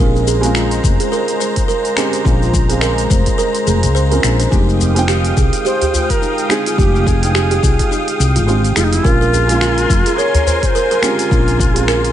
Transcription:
Already playing: felt piano G#3, analog synth pad G#3
0.00 fretless electric bass A#1, felt piano C4 C#4 F4, kalimba A#4, analog synth pad C5 A#5
0.16 shaker
0.27 kalimba G#4, shaker
0.41 felt piano G#3 C4 C#4 F4, open hi-hat, shaker
0.55 kalimba F4, finger snap, shaker
0.71 open hi-hat, shaker
0.84 fretless electric bass F1, kick, shaker
1.00 kalimba G#4, open hi-hat, shaker
1.12 kalimba A#4, shaker
1.28 open hi-hat, shaker
1.40 kalimba C5, shaker
1.56 kick, open hi-hat, shaker
1.68 kalimba A#4, shaker
1.85 open hi-hat, shaker
1.96 felt piano G#3 C4 C#4 G4, kalimba G#4, finger snap, shaker
2.13 open hi-hat, shaker
2.24 fretless electric bass A#1, felt piano G#3 C4 C#4 F4, kalimba F4, kick, shaker
2.43 shaker
2.54 kick, shaker
2.68 felt piano G#3 C4 C#4 F4, kalimba G#4, open hi-hat, shaker
2.81 kalimba A#4, finger snap, shaker
2.98 open hi-hat, shaker
3.10 fretless electric bass F1, kalimba C5, kick, shaker
3.26 kick, open hi-hat, shaker
3.38 kalimba A#4, shaker
3.55 open hi-hat, shaker
3.67 fretless electric bass F1, kalimba G#4, shaker
3.83 fretless electric bass C#2, open hi-hat, shaker
3.95 kalimba C5, shaker
4.11 felt piano G#3 C4 C#4 F4, kalimba A#4, open hi-hat, shaker
4.23 fretless electric bass A#1, finger snap, shaker
4.40 kalimba C5, open hi-hat, shaker
4.51 fretless electric bass F1, felt piano G#3 C4 D#4 G4, kalimba D#4, analog synth pad F5 G5 D#6, kick, shaker
4.69 shaker
4.80 udu, shaker
4.95 felt piano G#3 C4 D#4, kalimba F4, open hi-hat, shaker
4.99 felt piano G5
5.08 kalimba G4, finger snap, shaker
5.25 open hi-hat, shaker
5.37 fretless electric bass C2, kalimba G#4, kick, shaker
5.53 open hi-hat, shaker
5.65 kalimba G4, native american-style wooden flute C5, shaker
5.81 kalimba G4, open hi-hat, udu, shaker
5.94 kalimba F4, udu, shaker
6.10 native american-style wooden flute A#4, kick, open hi-hat, shaker
6.22 kalimba D#4, shaker
6.38 open hi-hat, shaker
6.49 felt piano G#3 C4 D#4 G#4, native american-style wooden flute G#4, finger snap, shaker
6.66 kalimba F4, open hi-hat, shaker
6.77 fretless electric bass F1, felt piano G#3 C4 D#4 G4, kalimba G4, native american-style wooden flute G4, kick, shaker
6.96 shaker
7.06 kalimba G#4, native american-style wooden flute G#4, kick, udu, shaker
7.21 felt piano G#3 C4 D#4 G5, open hi-hat, shaker
7.35 kalimba G4, finger snap, shaker
7.51 kalimba G4, open hi-hat, shaker
7.63 fretless electric bass C2, kalimba F4, kick, shaker
7.79 kick, open hi-hat, shaker
7.91 kalimba D#4, shaker
8.08 open hi-hat, shaker
8.20 fretless electric bass C2, shaker
8.36 fretless electric bass G#1, kalimba F4, open hi-hat, shaker
8.46 felt piano G#3 C4 D#4 F4, kalimba G4, shaker
8.64 open hi-hat, shaker
8.76 fretless electric bass F1, native american-style wooden flute F4, kalimba G#4, finger snap, shaker
8.84 native american-style wooden flute D#4
8.92 native american-style wooden flute E4, open hi-hat, shaker
9.03 fretless electric bass A#1, felt piano G#3 C4 C#4 F4, kalimba A#4, analog synth pad A#4 G#5 C6, kick, shaker
9.08 native american-style wooden flute F4
9.21 kalimba A#4, shaker
9.33 kalimba G#4, udu, shaker
9.47 felt piano G#3 A#3 C#4, open hi-hat, shaker
9.51 felt piano F4
9.61 kalimba F4, finger snap, shaker
9.78 open hi-hat, shaker
9.90 fretless electric bass F1, kick, shaker
10.06 kalimba G#4, open hi-hat, shaker
10.17 kalimba A#4, native american-style wooden flute C#5, shaker
10.34 open hi-hat, udu, shaker
10.46 kalimba C5, udu, shaker
10.62 native american-style wooden flute C#5, kick, open hi-hat, shaker
10.66 native american-style wooden flute C5
10.75 kalimba A#4, shaker
10.91 kalimba A#4, open hi-hat, shaker
11.02 felt piano G#3 C4 C#4 G4, native american-style wooden flute F4, kalimba G#4, finger snap, shaker
11.19 open hi-hat, shaker
11.30 fretless electric bass A#1, felt piano G#3 C4 C#4 F4, kalimba F4, kick, shaker
11.48 open hi-hat, shaker
11.59 kick, udu, shaker
11.74 felt piano G#3 C4 C#4 F4, kalimba G#4, open hi-hat, shaker
11.88 kalimba A#4, finger snap, shaker
12.05 open hi-hat, shaker

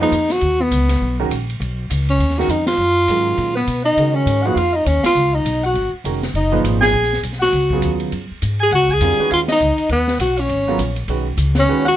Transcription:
Already playing: upright bass F#2
0.01 grand piano F3 A#3 D#4 G#4 B4, tenor saxophone D#4
0.11 upright bass F2, hi-hat pedal, ride
0.30 tenor saxophone F#4, snare, ride
0.41 upright bass D#2, ride
0.62 tenor saxophone B3
0.71 upright bass C#2, hi-hat pedal, ride
0.89 snare, ride
1.01 upright bass B1
1.20 grand piano D#3 G#3 C#4 F#4 A#4
1.30 upright bass A#1, hi-hat pedal, ride
1.50 ride
1.60 upright bass B1, ride
1.90 upright bass C#2, hi-hat pedal, ride
2.08 tenor saxophone C#4, ride
2.19 upright bass D#2, ride
2.30 snare
2.39 grand piano D#3 G#3 C#4 F#4 A#4, tenor saxophone F#4, snare
2.48 upright bass F2, tenor saxophone D#4, hi-hat pedal, ride
2.67 tenor saxophone F4, snare, ride
2.78 upright bass F#2
3.08 upright bass G#2, grand piano D#3 F#3 G#3 C#4 A#4, hi-hat pedal, ride
3.38 upright bass A#2, ride
3.55 tenor saxophone B3, alto saxophone B4
3.67 upright bass B2, hi-hat pedal, ride
3.84 tenor saxophone D#4, alto saxophone D#5, ride
3.97 upright bass C#3, grand piano D#3 G#3 C#4 F#4 A#4, ride
4.13 tenor saxophone C#4, alto saxophone C#5
4.26 upright bass G#2, hi-hat pedal, ride
4.42 grand piano F3 A#3 D#4 G#4 B4, tenor saxophone F#4, alto saxophone F#5
4.55 upright bass F2, tenor saxophone F4, alto saxophone F5, ride
4.73 tenor saxophone D#4, alto saxophone D#5
4.85 upright bass D#2, tenor saxophone C#4, alto saxophone C#5, hi-hat pedal, ride
5.03 tenor saxophone F4, alto saxophone F5, muted upright bass stroke, snare, ride
5.15 upright bass C#2
5.33 tenor saxophone D#4, alto saxophone D#5
5.45 upright bass B1, hi-hat pedal, ride
5.63 tenor saxophone F#4, alto saxophone F#5, ride
5.74 upright bass G#1, ride
5.93 muted upright bass stroke
6.04 upright bass F1, grand piano D#3 G#3 C#4 F#4 A#4, hi-hat pedal, ride
6.23 snare, ride
6.34 upright bass F#1, tenor saxophone D#4, alto saxophone D#5, ride
6.52 grand piano A#2 F3 D#4 G#4 B4
6.64 upright bass G#1, hi-hat pedal, ride
6.81 tenor saxophone G#4, alto saxophone G#5, snare, ride
6.93 upright bass A#1
7.03 snare
7.13 snare
7.23 upright bass B1, hi-hat pedal, ride
7.33 snare
7.39 tenor saxophone F#4, alto saxophone F#5, snare
7.53 upright bass C#2, ride
7.70 grand piano C#3 F#3 B3 F4 G#4, kick
7.82 upright bass D#2, hi-hat pedal, ride
8.00 ride
8.12 upright bass F#2, ride
8.31 muted upright bass stroke
8.42 upright bass G#2, hi-hat pedal, ride
8.59 tenor saxophone G#4, alto saxophone G#5, ride
8.71 upright bass C#2, alto saxophone F#5, ride
8.75 tenor saxophone F#4
8.89 alto saxophone G#5, kick
8.94 tenor saxophone G#4
9.00 upright bass F2, grand piano D3 G3 C4 F4 A#4, hi-hat pedal, ride
9.19 grand piano D#3 G#3 C#4 F#4 B4, muted upright bass stroke
9.31 upright bass D#2, tenor saxophone F4, alto saxophone F5, ride
9.48 tenor saxophone D#4, alto saxophone D#5, snare, ride
9.60 upright bass C#2, hi-hat pedal
9.78 ride
9.89 upright bass D#2, tenor saxophone B3, alto saxophone B4, ride
10.08 snare
10.19 upright bass B1, tenor saxophone F#4, alto saxophone F#5, hi-hat pedal, ride
10.37 tenor saxophone C#4, alto saxophone C#5, ride
10.48 upright bass G#1, ride
10.68 grand piano C#3 F#3 B3 F4 A#4
10.78 upright bass A#1, hi-hat pedal, ride
10.96 ride
11.08 upright bass B1, grand piano D#3 G#3 C#4 F#4 B4, ride
11.37 upright bass C#2, hi-hat pedal, ride
11.55 alto saxophone C#5, snare, ride
11.60 tenor saxophone C#4
11.66 upright bass D#2, grand piano D#3 G#3 C#4 F#4 B4
11.85 tenor saxophone F#4, alto saxophone F#5, snare

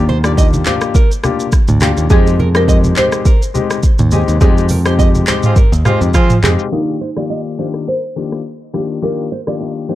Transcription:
Already playing: picked electric bass D#2, marimba D5
0.09 nylon-string guitar C5, high conga
0.24 grand piano A#3 D4 F4 G4, nylon-string guitar D5, cross-stick, shaker
0.37 nylon-string guitar D#5, kick, shaker
0.53 high conga, shaker
0.66 grand piano A#3 D4 F4 G4, nylon-string guitar C5, clap, low conga, shaker
0.81 cross-stick, shaker
0.95 nylon-string guitar A#4, kick, shaker
1.12 shaker
1.24 grand piano A#3 D4 F4 G4, cross-stick, high conga, shaker
1.40 shaker
1.52 kick, cross-stick, shaker
1.68 picked electric bass D2, mid tom, shaker
1.80 grand piano A#3 D4 F4 G4, nylon-string guitar G4, cross-stick, clap, high conga, shaker
1.97 picked electric bass D#2, shaker
2.10 picked electric bass F2, grand piano G#3 C4 D#4 G4, nylon-string guitar G#4, marimba G#4, kick, low conga, shaker
2.27 shaker
2.39 nylon-string guitar A#4, high conga
2.55 grand piano G#3 C4 D#4 G4, marimba A#4, nylon-string guitar C5, cross-stick, shaker
2.68 nylon-string guitar D#5, kick, shaker
2.84 high conga, shaker
2.96 grand piano G#3 C4 D#4 G4, nylon-string guitar C5, marimba C5, clap, low conga, shaker
3.12 cross-stick, shaker
3.25 nylon-string guitar A#4, kick, shaker
3.42 shaker
3.54 grand piano G#3 C4 D#4 G4, high conga, shaker
3.70 cross-stick, shaker
3.83 kick, shaker
3.99 picked electric bass D#2, mid tom, shaker
4.11 grand piano G#3 C4 D#4 G4, nylon-string guitar G#4, high conga, shaker
4.28 picked electric bass D#2, shaker
4.41 picked electric bass F2, grand piano G#3 C4 D#4 G4, nylon-string guitar G#4, kick, low conga, shaker
4.58 shaker
4.69 nylon-string guitar A#4, open hi-hat, high conga, shaker
4.85 grand piano G#3 C4 D#4 G4, nylon-string guitar C5, cross-stick, shaker
4.99 nylon-string guitar D#5, kick, shaker
5.15 high conga, shaker
5.27 grand piano G#3 C4 D#4 G4, nylon-string guitar C5, clap, low conga, shaker
5.43 horn section C4 F4 G#4 C5, mid tom, shaker
5.56 nylon-string guitar A#4, kick, shaker
5.72 picked electric bass D#2, shaker
5.85 grand piano G#3 C4 D#4 G4, horn section C4 F4 G#4 C5, cross-stick, mid tom, high conga, shaker
6.01 picked electric bass F2, shaker
6.14 picked electric bass F3, horn section C4 F4 G#4 C5, kick, cross-stick, high conga, shaker
6.30 mid tom, shaker
6.43 picked electric bass F2, grand piano G#3 C4 D#4 G4, nylon-string guitar G#4, cross-stick, clap, high conga
6.59 shaker
6.72 grand piano D#3 A#3 D4 F4 G4, marimba D#4, nylon-string guitar A#4
7.01 nylon-string guitar C5
7.16 grand piano D#3 A#3 F4 G4 D5, nylon-string guitar D5, cross-stick
7.30 nylon-string guitar D#5
7.58 grand piano D#3 A#3 D4 F4 G4, nylon-string guitar C5
7.74 cross-stick
7.88 nylon-string guitar A#4, marimba C5
8.16 grand piano D#3 A#3 D4 F4 G4
8.32 cross-stick
8.73 grand piano D#3 A#3 D4 F4 G4, nylon-string guitar G4, cross-stick
9.02 grand piano D#3 A#3 D4 F4 G4, nylon-string guitar A#4, marimba A#4, shaker
9.19 shaker
9.32 nylon-string guitar C5
9.47 grand piano D#3 A#3 D4 F4 G4, nylon-string guitar D5, cross-stick
9.61 nylon-string guitar D#5, shaker
9.89 grand piano D#3 A#3 D4 F4 G4, nylon-string guitar C5, shaker

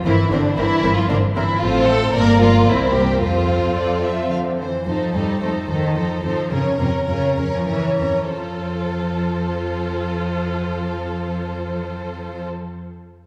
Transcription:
0.04 double bass section G1, cello section E3, viola section C4 A#4, violin section E4 C5
0.31 double bass section G1, cello section D3, viola section C4 A#4, violin section D4 C5
0.56 double bass section G1, cello section E3, viola section C4 A#4, violin section E4 C5
0.83 double bass section G1, viola section C4 A#4, violin section C5
0.96 cello section F3, violin section F4
1.09 double bass section G1, cello section D3, viola section C4 A#4, violin section D4 C5
1.36 double bass section G1, cello section E3, viola section C4 A#4, violin section E4 C5
1.61 double bass section A1, cello section F3, viola section C4 A4, violin section F4 C5
1.87 cello section A3, violin section A4
2.13 double bass section G1, cello section A#3, viola section A#3 A#4, violin section A#4 D5
2.42 cello section F3, violin section F4
2.69 double bass section C2, cello section E3, viola section C4 A#4, violin section E4 C5
2.96 cello section G3, violin section G4
3.22 double bass section F2, cello section F3, viola section C4 A4, violin section F4 C5
3.76 violin section D5
4.04 violin section E5
4.31 cello section D3, violin section F5
4.58 cello section E3, violin section C5
4.86 double bass section F2, cello section F3, viola section D#4, violin section A4 C5
5.14 double bass section F2, cello section G3, viola section D#4, violin section A4 C5
5.41 double bass section F2, cello section A3, viola section D#4, violin section A4 C5
5.68 double bass section F2, cello section D#3, viola section D#4, violin section A4 C5
5.95 double bass section F2, cello section F3, viola section D#4, violin section A4 C5
6.23 double bass section F2, cello section F3, viola section D#4, violin section A4 C5
6.50 double bass section F2, cello section C#3, viola section C#4, violin section A#4 C#5
6.77 double bass section F2, cello section C3, viola section C#4, violin section A#4 C#5
7.07 double bass section F2, cello section C#3, viola section C#4, violin section A#4 C#5
7.35 double bass section F2, viola section C#4, violin section A#4 C#5
7.54 cello section F3
7.67 double bass section F2, cello section E3, viola section C#4, violin section A#4 C#5
7.98 double bass section F2, viola section C#4, violin section A#4 C#5
8.30 double bass section F2, cello section F3, viola section F4, violin section A4 C5

